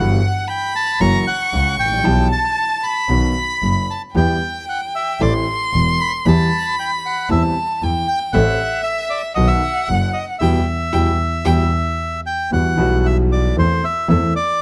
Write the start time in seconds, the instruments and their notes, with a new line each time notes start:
Already playing: grand piano G1 G2 E3 G3 B3 F#4, double bass G1, bandoneon F#5, violin F#5
0.48 bandoneon G5, violin B5
0.76 bandoneon A5
1.00 double bass F#1, grand piano F#2 E3 F#3 A#3 C#4 F#4, bandoneon A#5, violin C#6
1.27 bandoneon F#5
1.53 grand piano C#2 C#3, double bass C#2
1.79 double bass A1, bandoneon G5
1.85 grand piano G#1
1.92 grand piano A1
1.98 grand piano A#1
2.04 grand piano B1 B2 E3 G3 B3 G4, double bass B1, violin A5
2.32 bandoneon A5
2.83 bandoneon B5
3.09 double bass B1, grand piano B1 B2 D#3 F#3 B3 F#4, violin B5
3.62 double bass F#1, grand piano F#1 F#2
3.90 bandoneon A5
4.15 grand piano E2 E3 G3 B3 G4, double bass E2, violin G5, bandoneon G5
4.69 bandoneon F#5
4.95 bandoneon E5
5.20 double bass A1, grand piano A1 A2 E3 A3 C4 A4, bandoneon D5, violin C6
5.74 grand piano E1 E2, double bass E1
6.01 bandoneon B5
6.26 double bass E2, grand piano E2 E3 G3 B3 G4, bandoneon A5, violin B5
6.79 bandoneon G5
7.06 bandoneon F#5
7.29 double bass E2, grand piano E2 E3 G3 C4 G4, bandoneon E5, violin A5
7.82 double bass E2, grand piano E2 E3, violin G5
8.08 bandoneon G5
8.33 double bass A1, grand piano A1 A2 E3 A3 C4 A4, violin E5, bandoneon F#5
8.83 bandoneon E5
9.10 bandoneon D5
9.35 double bass B1, grand piano B1 B2 D#3 F#3 B3 F#4, bandoneon D#5, violin F#5
9.47 bandoneon E5
9.86 grand piano F#1 F#2, double bass F#1, bandoneon F#5
10.13 bandoneon D#5
10.39 double bass E2, grand piano B2 E3 G3, bandoneon E5, violin G5
10.93 double bass E2, grand piano B2 E3 G3, violin G5
11.45 double bass E2, grand piano B2 E3 G3, violin G5
12.26 bandoneon G5
12.51 double bass E2, grand piano E2 E3 G3 B3 F#4, bandoneon F#5
12.76 double bass B1, grand piano B1 B2 E3 G3 B3 F#4
13.06 bandoneon E5
13.32 bandoneon D5
13.56 double bass E2, grand piano E2 E3 A3 C4 A4, bandoneon C5
13.84 bandoneon E5
14.08 grand piano E2 E3 A3 C4 A4, double bass E2, bandoneon E5
14.36 bandoneon D5